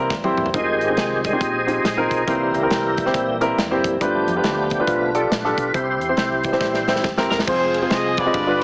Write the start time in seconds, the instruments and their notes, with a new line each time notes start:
Already playing: fingered electric bass C2, grand piano C3 C4 E4 G4 A#4, tonewheel organ E3 G3 A#3
0.10 fingered electric bass D#1, kick, snare
0.24 grand piano C4 E4 G4 C5, high tom
0.37 fingered electric bass E1, mid tom
0.46 floor tom
0.54 fingered electric bass F1, tonewheel organ D#3 G#3 G4 G#4 C5 D#5, grand piano C4 D#4 F4 G#4, kick, closed hi-hat
0.81 fingered electric bass G#1, closed hi-hat
0.89 grand piano C4 D#4 F4 G#4
0.97 fingered electric bass C2, tonewheel organ D#5, snare, closed hi-hat
1.24 tonewheel organ D#3 G3 G#3 G#4 C5 D#5, kick, closed hi-hat
1.33 grand piano C4 D#4 F4 G4
1.41 fingered electric bass A#1, kick, closed hi-hat
1.67 grand piano C4 D#4 F4 G4, closed hi-hat
1.84 fingered electric bass A#1, snare, closed hi-hat
1.97 grand piano C4 D#4 F4 A#4
2.11 fingered electric bass B1, kick, closed hi-hat
2.27 fingered electric bass C2, grand piano C3 C4 E4 G4 A#4, tonewheel organ E3 G3 A#3 E4 G4 C5, kick, closed hi-hat
2.54 fingered electric bass C#2, tonewheel organ E4 G4 A#4, closed hi-hat
2.63 grand piano C4 E4 G4 A#4
2.70 fingered electric bass C2, snare, closed hi-hat
2.97 kick, closed hi-hat
3.06 grand piano C4 E4 G4 C5, snare
3.14 fingered electric bass A#1, kick, closed hi-hat
3.41 grand piano C4 E4 G4 A#4, closed hi-hat
3.58 fingered electric bass F1, snare, closed hi-hat
3.71 grand piano C4 E4 G4 C5
3.84 fingered electric bass F#1, kick, closed hi-hat
4.00 fingered electric bass G1, grand piano G2 D4 F4 G4 B4, tonewheel organ F3 A3 B3 D4 G4, kick, closed hi-hat
4.28 fingered electric bass F2, closed hi-hat
4.36 grand piano D4 F4 G4 B4
4.44 fingered electric bass D2, snare, closed hi-hat
4.70 kick, closed hi-hat
4.80 grand piano D4 F4 G4 B4
4.87 fingered electric bass B1, tonewheel organ F3 A3 B3 D4 F4 B4, kick, closed hi-hat
5.15 grand piano D4 F4 G4 A4, tonewheel organ D5, closed hi-hat
5.31 fingered electric bass A#1, tonewheel organ D4 F4 B4, snare, closed hi-hat
5.45 grand piano D4 F4 G4 A4, snare
5.58 fingered electric bass B1, kick, closed hi-hat
5.74 fingered electric bass C2, grand piano C3 C4 E4 G4 C5, tonewheel organ E4 G4 C5, kick, closed hi-hat
6.01 fingered electric bass E2, closed hi-hat
6.09 grand piano C4 E4 G4 C5
6.17 fingered electric bass C2, snare, closed hi-hat
6.43 tonewheel organ E3 G3 C4, kick, closed hi-hat
6.52 grand piano C4 E4 G4 C5, snare
6.61 fingered electric bass A#1, kick, snare
6.74 snare
6.88 grand piano C4 E4 G4 C5, snare
6.96 snare
7.04 fingered electric bass D#1, kick, snare
7.18 grand piano C4 E4 G4 A#4, snare
7.31 fingered electric bass E1, horn section A#4, snare
7.39 snare
7.47 fingered electric bass F1, tonewheel organ F3 G#3 C4 G#4, grand piano C4 F4 G#4 C5, horn section F4 G#4 C5, kick, crash
7.74 ride
7.82 grand piano C4 F4 G#4 C5
7.90 fingered electric bass C2, horn section D#5, snare, ride
8.17 horn section F4 B4 D5, kick, ride
8.26 grand piano C4 F4 G#4 D#5
8.34 fingered electric bass G1, grand piano G2, tonewheel organ D3 G3 B3 F4, kick, ride
8.47 grand piano D4 F4 G4 B4